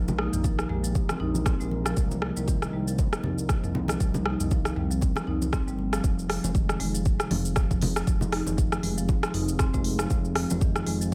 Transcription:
Already playing: analog synth bass A#1, analog synth pad G#3 A#3 D#4 G4 A#4
0.08 high conga, low conga, shaker
0.18 marimba D#4, cross-stick
0.33 analog synth bass A#1, marimba D#3, mid tom, shaker
0.44 marimba F3, kick, high conga, shaker
0.59 cross-stick, shaker
0.69 analog synth bass A#1, marimba G#3, mid tom
0.84 marimba F3, shaker
0.95 kick, low conga, shaker
1.09 marimba C4, cross-stick, high conga, shaker
1.20 analog synth bass A#1, marimba D#4, mid tom
1.35 high conga, shaker
1.46 marimba C4, kick, cross-stick, shaker
1.60 analog synth bass A#1, marimba G#3, shaker
1.71 high conga
1.86 marimba F3, cross-stick, shaker
1.97 analog synth bass C2, marimba F3, analog synth pad G3 C4 D#4, kick, shaker
2.11 high conga, shaker
2.22 marimba F3, cross-stick
2.37 analog synth bass C2, marimba G3, shaker
2.48 marimba D#3, kick, high conga, shaker
2.62 cross-stick, shaker
2.73 analog synth bass C2, marimba G3
2.88 marimba F3, shaker
2.98 kick, high conga, shaker
3.13 marimba C3, cross-stick, shaker
3.23 analog synth bass C2, marimba F3, mid tom, low conga
3.38 shaker
3.49 kick, cross-stick, shaker
3.64 analog synth bass C2, marimba F3, mid tom, shaker
3.75 low conga
3.88 marimba F3, cross-stick, high conga, shaker
4.00 analog synth bass C2, marimba F3, kick, shaker
4.14 high conga, low conga, shaker
4.26 marimba D#4, cross-stick
4.40 analog synth bass C2, marimba D#3, mid tom, shaker
4.51 marimba F3, kick, high conga, shaker
4.65 cross-stick, shaker
4.76 analog synth bass C2, marimba G3, mid tom
4.91 marimba F3, shaker
5.01 kick, low conga, shaker
5.16 marimba C4, cross-stick, high conga, shaker
5.27 analog synth bass C2, marimba D#4, mid tom
5.42 high conga, shaker
5.53 marimba C4, kick, cross-stick, shaker
5.67 analog synth bass G1, marimba G3, shaker
5.79 high conga
5.93 marimba F3, cross-stick, shaker
6.04 analog synth bass F1, marimba F3, analog synth pad C4 D#4 F4 G#4, kick, shaker
6.19 shaker
6.29 marimba F3, cross-stick, open hi-hat
6.43 analog synth bass F1, marimba G#3, high conga, shaker
6.55 marimba D#3, kick, shaker
6.69 cross-stick, shaker
6.80 analog synth bass F1, marimba G#3, open hi-hat, high conga
6.94 marimba F3, shaker
7.05 kick, shaker
7.19 marimba C3, cross-stick, shaker
7.30 analog synth bass F1, marimba F3, mid tom, open hi-hat, high conga, low conga
7.45 shaker
7.56 marimba F3, kick, cross-stick, shaker
7.70 analog synth bass F1, marimba F3, kick, mid tom, high conga, shaker
7.82 open hi-hat, low conga
7.96 marimba F3, cross-stick, shaker
8.07 analog synth bass F1, marimba F3, kick, high conga, shaker
8.21 low conga, shaker
8.32 marimba D#4, cross-stick, open hi-hat
8.47 analog synth bass F1, marimba D#3, mid tom, high conga, shaker
8.58 marimba F3, kick, shaker
8.72 cross-stick, shaker
8.83 analog synth bass F1, marimba G#3, mid tom, open hi-hat, high conga
8.98 marimba F3, shaker
9.09 kick, low conga, shaker
9.23 marimba C4, cross-stick, shaker
9.34 analog synth bass F1, marimba D#4, mid tom, open hi-hat
9.48 shaker
9.59 marimba C4, kick, cross-stick, shaker
9.74 analog synth bass F1, marimba G#3, kick, shaker
9.84 open hi-hat
9.99 marimba F3, cross-stick, shaker
10.10 analog synth bass F1, marimba F3, kick, shaker
10.25 shaker
10.35 marimba F3, cross-stick, open hi-hat
10.50 analog synth bass F1, marimba G#3, high conga, shaker
10.61 marimba D#3, kick, shaker
10.76 cross-stick, shaker
10.86 analog synth bass F1, marimba G#3, open hi-hat, high conga
11.01 marimba F3, shaker

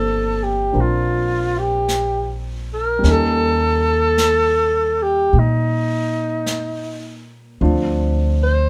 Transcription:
Already playing: upright bass G1, grand piano F3 A#3 C4 D4 G4, alto saxophone A4
0.43 alto saxophone G4
0.72 upright bass A#1, grand piano C4 D4 F4 A#4, brush sweep
0.80 alto saxophone F4
1.58 alto saxophone G4
1.88 brush sweep, snare, hi-hat pedal
2.73 alto saxophone A#4
2.99 grand piano G3 A#3
3.03 upright bass D#2, grand piano C#4 D#4, brush sweep, snare
3.10 grand piano A4, alto saxophone A4
4.18 brush sweep, snare, hi-hat pedal
5.03 alto saxophone G4
5.33 upright bass A#2, brush sweep
5.38 alto saxophone D#4
6.46 brush sweep, snare, hi-hat pedal
7.60 upright bass D2, grand piano F3 C4 D4 F4, brush sweep
8.43 alto saxophone C5

